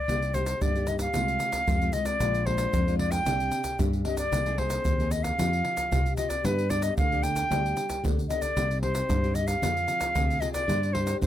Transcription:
Already playing: D5
0.08 C2 C3 A#3 D#4 G4, pandeiro, shaker, surdo
0.22 pandeiro, shaker
0.34 A#3 D#4 G4 C5, pandeiro, shaker, surdo
0.46 pandeiro, shaker
0.61 G2 A#3 D#4 G4 D5, pandeiro, shaker, surdo
0.75 A#3 D#4 G4, pandeiro, shaker
0.87 D#5, pandeiro, shaker
0.99 F5, pandeiro, shaker, surdo
1.14 C2 C3 G#3 C4 F4, pandeiro, shaker, surdo
1.28 pandeiro, shaker
1.40 pandeiro, shaker
1.52 pandeiro, shaker, surdo
1.67 F2 C3 G#3 C4 F4, pandeiro, shaker, surdo
1.81 G#3 C4 F4, pandeiro, shaker
1.93 G#3 C4 F4 D#5, pandeiro, shaker
2.05 D5, pandeiro, shaker, surdo
2.20 A#1 A#2 G#3 D4 F4, pandeiro, shaker, surdo
2.34 pandeiro, shaker
2.46 G#3 D4 F4 C5, pandeiro, surdo
2.58 pandeiro, shaker
2.73 F2, pandeiro, shaker, surdo
2.87 G#3 D4 F4, pandeiro, shaker
2.99 D5, pandeiro
3.11 G5, pandeiro, shaker, surdo
3.25 C2 C3 C4 D4 G4, pandeiro, shaker, surdo
3.40 pandeiro, shaker
3.52 pandeiro, shaker
3.64 pandeiro, shaker, surdo
3.79 G2 C4 D4 G4, pandeiro, shaker, surdo
3.93 pandeiro, shaker
4.04 C4 D4 G4 D#5, pandeiro, surdo
4.17 D5, pandeiro, shaker, surdo
4.32 C2 C3 A#3 D#4 G#4, pandeiro, shaker, surdo
4.46 A#3 D#4 G#4, pandeiro, shaker
4.58 A#3 D#4 G#4 C5, pandeiro, surdo
4.70 pandeiro, shaker
4.85 D#2 C3, pandeiro, shaker, surdo
5.00 A#3 D#4 G#4, pandeiro, shaker
5.11 D#5, pandeiro, shaker
5.23 F5, pandeiro, shaker, surdo
5.38 F2 F3 C4 F4 G4, pandeiro, shaker, surdo
5.53 pandeiro, shaker
5.65 pandeiro
5.77 pandeiro, shaker, surdo
5.92 C2 C3 C4 F4 G4, pandeiro, shaker, surdo
6.06 pandeiro, shaker
6.17 C4 F4 G4 D#5, pandeiro, shaker, surdo
6.29 D5, pandeiro, shaker, surdo
6.44 G2 G3 B3 D4 G4 B4, pandeiro, shaker, surdo
6.59 pandeiro, shaker
6.70 B3 D4 G4 D5, pandeiro, shaker, surdo
6.82 D#5, pandeiro, shaker
6.97 D2 D3 F5, pandeiro, shaker, surdo
7.12 B3 D4 G4, pandeiro, shaker
7.23 G5, pandeiro, shaker
7.36 pandeiro, shaker, surdo
7.51 D2 G3 B3 D4 G4, pandeiro, shaker, surdo
7.66 pandeiro, shaker
7.77 pandeiro, shaker
7.89 pandeiro, shaker, surdo
8.04 D2 D3 B3 D4 G4, pandeiro, shaker, surdo
8.19 pandeiro, shaker
8.29 B3 D4 G4 D#5, pandeiro, shaker
8.41 D5, pandeiro, shaker, surdo
8.56 C2 C3 C4 D#4 G4, pandeiro, shaker, surdo
8.71 pandeiro, shaker
8.82 C4 D#4 G4 C5, pandeiro, surdo
8.95 pandeiro, shaker
9.09 G2, pandeiro, shaker, surdo
9.24 C4 D#4 G4, pandeiro, shaker
9.35 D#5, pandeiro, shaker
9.47 F5, pandeiro, shaker, surdo
9.62 F2 F3 C4 F4 G#4, pandeiro, shaker, surdo
9.77 pandeiro, shaker
9.88 pandeiro, shaker
10.01 pandeiro, shaker, surdo
10.15 D2 C3 C4 F4 G#4, pandeiro, shaker, surdo
10.30 pandeiro, shaker
10.40 C4 F4 G#4 D#5, pandeiro, shaker
10.53 D5, pandeiro, shaker, surdo
10.68 G2 G3 D4 G4 C5, pandeiro, shaker, surdo
10.83 pandeiro, shaker
10.93 D4 G4 C5, pandeiro, surdo
11.07 pandeiro, shaker
11.21 G2 D3 C5, pandeiro, shaker, surdo

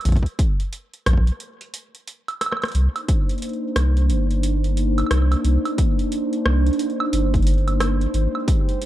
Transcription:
0.01 closed hi-hat
0.05 A#1, kick, closed hi-hat
0.09 kick
0.12 kick, closed hi-hat
0.16 kick, closed hi-hat
0.23 kick, closed hi-hat
0.39 kick, closed hi-hat
0.60 closed hi-hat
0.73 closed hi-hat
0.94 closed hi-hat
1.06 A#1, kick, cross-stick, closed hi-hat
1.13 kick
1.17 kick
1.27 closed hi-hat
1.40 closed hi-hat
1.61 closed hi-hat
1.74 closed hi-hat
1.95 closed hi-hat
2.07 closed hi-hat
2.28 closed hi-hat, high woodblock
2.41 cross-stick, closed hi-hat, high woodblock
2.46 high woodblock
2.52 cross-stick, high woodblock
2.57 high woodblock
2.62 cross-stick, closed hi-hat, high woodblock
2.65 closed hi-hat, high woodblock
2.68 closed hi-hat, high woodblock
2.72 C2 A#3 D4 D#4 C5, closed hi-hat
2.75 closed hi-hat
2.96 closed hi-hat, high woodblock
3.08 kick, closed hi-hat
3.29 closed hi-hat
3.31 closed hi-hat
3.38 closed hi-hat
3.42 closed hi-hat
3.49 closed hi-hat
3.53 closed hi-hat
3.76 C2, cross-stick, closed hi-hat
3.97 closed hi-hat
4.10 G1, closed hi-hat
4.31 closed hi-hat
4.43 closed hi-hat
4.64 closed hi-hat
4.77 closed hi-hat
4.98 closed hi-hat, high woodblock
5.00 high woodblock
5.07 high woodblock
5.11 C2, cross-stick, closed hi-hat
5.18 high woodblock
5.22 high woodblock
5.32 closed hi-hat, high woodblock
5.44 C2, closed hi-hat
5.65 closed hi-hat, high woodblock
5.78 kick, closed hi-hat
5.99 closed hi-hat
6.12 closed hi-hat
6.33 closed hi-hat
6.46 C2, cross-stick
6.67 closed hi-hat
6.73 closed hi-hat
6.79 closed hi-hat
6.90 closed hi-hat
7.00 high woodblock
7.13 G1, closed hi-hat
7.34 kick, closed hi-hat
7.36 closed hi-hat
7.42 closed hi-hat
7.47 closed hi-hat
7.54 closed hi-hat
7.58 closed hi-hat
7.68 closed hi-hat, high woodblock
7.80 cross-stick, closed hi-hat, high woodblock
8.01 closed hi-hat
8.14 G#1 G#3 D#4 G4, closed hi-hat
8.35 high woodblock
8.48 kick, closed hi-hat
8.69 closed hi-hat
8.82 closed hi-hat

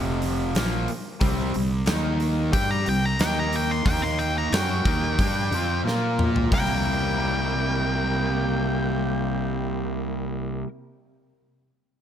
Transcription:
Already playing: F1 F2 C3 F3
0.22 open hi-hat
0.54 A#1 A#2 F3 A#3, snare, open hi-hat
0.88 muted fingered electric bass stroke, muted overdriven electric guitar stroke, open hi-hat
1.20 C2 C3 G3 C4, kick, open hi-hat
1.54 C2 C3 G3, open hi-hat
1.86 D#2 D#3 A#3 D#4, snare, open hi-hat
2.20 open hi-hat
2.52 G2 G3 D4 G4 G5, kick, open hi-hat
2.71 A#5
2.86 C2 C3 G3 G5, open hi-hat
3.05 A#5
3.19 D#2 D#3 A#3 D#4 G5, snare, open hi-hat
3.39 A#5
3.53 G5, open hi-hat
3.71 C6
3.85 D#2 D#3 A#3 D#4 G5, kick, open hi-hat
4.02 C6
4.19 G5, open hi-hat
4.38 A#5
4.52 F#2 F#3 C#4 F#4 G5, snare, open hi-hat
4.85 D#2 D#3 A#3 D#4, kick, open hi-hat
5.19 G2 G3 D4 G4, kick, open hi-hat
5.51 F2 F3 C4 F4, open hi-hat
5.84 A#2 A#3 F4 A#4, snare
6.19 mid tom
6.36 floor tom
6.52 C2 C3 G3 A#3 E4 G5, kick, open hi-hat
6.56 A#4

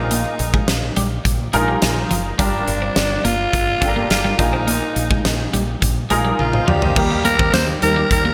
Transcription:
Already playing: A#1 A#2 D#4 F4 G#4 A#4
0.11 A#3, closed hi-hat
0.39 A#1, muted clean electric guitar stroke, closed hi-hat
0.54 G#3, kick
0.68 A#1, snare, closed hi-hat
0.96 A#1 G3, closed hi-hat
1.25 A#1, muted clean electric guitar stroke, kick, closed hi-hat
1.53 A#1 G#3 D#4 F4 G#4 A#4, closed hi-hat
1.68 G3
1.82 A#1, snare, closed hi-hat
2.11 F#1 F3, closed hi-hat
2.38 G1 G2 G3 D4 F4 G4 A#4, kick, closed hi-hat
2.67 G1, muted clean electric guitar stroke, closed hi-hat
2.82 C4
2.96 G1, snare, closed hi-hat
3.24 G1 A#3 F4, closed hi-hat
3.53 G1, muted clean electric guitar stroke, kick, closed hi-hat
3.81 G1 C4 D4 F4 G4 A4, kick, closed hi-hat
3.88 A#4
3.96 A#3
4.10 G1 F4, snare, closed hi-hat
4.24 G3
4.38 A#1 A#2 D#4 F4 G#4 A#4, muted clean electric guitar stroke, kick, closed hi-hat
4.53 C4
4.67 A#3, closed hi-hat
4.96 A#1, muted clean electric guitar stroke, closed hi-hat
5.11 G#3, kick
5.25 A#1, snare, closed hi-hat
5.53 A#1 G3, closed hi-hat
5.82 A#1, muted clean electric guitar stroke, kick, closed hi-hat
6.10 A#1 G#3 D#4 F4 G#4 A#4, closed hi-hat
6.25 G3
6.39 A#1 F4, high tom
6.53 C5 D#5, mid tom
6.67 D2 F3 G4 D5 F5, mid tom
6.81 C5 D#5, floor tom
6.96 D#2 D#3 G3 A#3 D#4 G4 A#4, kick, crash
7.11 muted clean electric guitar stroke
7.25 A#3 A#4, closed hi-hat
7.39 D#2 C4, kick
7.53 D#2 A#3 C5, snare, closed hi-hat, tambourine
7.82 D#2 G3 D#4 A#4, muted clean electric guitar stroke, closed hi-hat
7.96 G3
8.11 D#2 A#4, kick, closed hi-hat
8.25 A#3

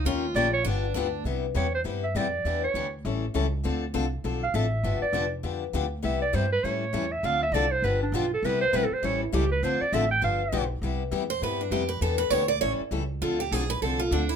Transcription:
0.05 D#2 D#3 A#3 C#4 F4 G4 A#4
0.34 A#1 D#3 A#3 C#4 G4 A#4 D5
0.53 C#5
0.65 G1 D3 F3 B3 D4 G4
0.94 D2 D3 F3 B3 D4 G4
1.24 C2 C3 G3 B3 E4 G4
1.54 E2 C3 G3 B3 E4 G4 C#5
1.74 C5
1.84 G2 C3 G3 B3 E4 G4
2.04 E5
2.15 F2 C3 G3 B3 E4 G4 D5
2.45 E2 E3 B3 D4 G4
2.64 C#5
2.74 D2 E3 B3 D4 G4
3.05 A1 E3 G3 C#4 E4 A4
3.34 C#2 E3 G3 C#4 E4 A4
3.64 D2 D3 F3 C4 D4 A4
3.94 C2 D3 F3 C4 D4 A4
4.24 B1 D3 F3 C4 D4 A4
4.43 F5
4.54 A1 D3 F3 C4 D4 A4 E5
4.83 G1 D3 F3 B3 D4 G4
5.02 D5, muted upright bass stroke
5.13 F1 D3 F3 B3 D4 G4
5.43 F2 D3 F3 B3 D4 G4
5.73 D2 D3 F3 B3 D4 G4
6.02 C2 C3 G3 B3 E4 G4 E5
6.22 D5
6.33 G2 C3 G3 B3 E4 G4 C5
6.52 B4
6.64 A2 E3 G3 C#4 E4 A4 C#5
6.93 E2 E3 G3 C#4 E4 A4
7.12 E5
7.23 D2 D3 F3 C4 D4 A4 F5
7.43 E5
7.52 C2 D3 F3 C4 D4 A4 D5
7.71 C5
7.82 G1 D3 F3 B3 D4 G4 B4
8.03 D4
8.12 B1 D3 F3 B3 D4 F4 G4
8.34 A4
8.43 C2 C3 G3 B3 E4 G4 B4
8.61 C5
8.73 B1 C3 G3 B3 E4 G4 B4
8.84 A4
8.91 C5, muted upright bass stroke
9.03 A1 E3 G3 C#4 E4 A4 C#5
9.23 E4
9.32 C#2 E3 G3 C#4 E4 G4 A4
9.52 B4
9.63 D2 D3 F3 C4 D4 A4 C5
9.81 D5, muted upright bass stroke
9.93 A1 D3 F3 C4 D4 A4 E5
10.11 G5
10.21 G1 D3 F3 B3 D4 G4 F5
10.52 B1 D3 F3 B3 D4 G4
10.82 C2 C3 G3 B3 E4 G4
11.11 E2 C3 G3 B3 E4 G4
11.30 C5
11.42 G2 C3 G3 B3 E4 G4 B4
11.61 D4
11.71 F2 C3 G3 B3 E4 G4
11.89 B4
12.01 E2 E3 B3 D4 G4 A4
12.18 B4
12.30 D2 E3 B3 D4 G4 C#5
12.48 D5
12.61 A1 E3 G3 C#4 E4 A4 C#5
12.80 muted upright bass stroke
12.91 C#2 E3 G3 C#4 E4 A4
13.21 D2 D3 F3 C4 D4 F4 A4
13.40 G4
13.51 B1 D3 F3 C4 D4 G#4 A4
13.70 B4
13.82 C2 D3 F3 C4 D4 A4
13.99 F4
14.11 D2 D3 F3 C4 D4 A4
14.29 E4

